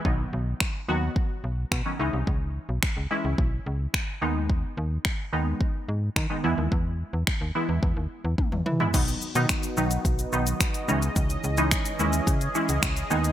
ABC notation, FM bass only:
X:1
M:4/4
L:1/16
Q:1/4=108
K:B
V:1 name="FM bass" clef=bass
B,,,2 B,,,2 z2 D,,2 z2 B,,,2 B,, z C,, =C,, | C,,3 B,,, z C,, z C,, B,,,2 C,,2 z2 D,,2- | D,,2 D,,2 z2 D,,2 z2 G,,2 D, z E,, D,, | E,,3 E,, z D,, z E,, E,, D,, z E,, z E,, E,2 |
B,,,2 z B,, z2 B,,,2 B,,,2 B,,,2 z2 C,,2 | C,,2 C,,3 z D,,2 C,2 z C,, C,,2 D,,2 |]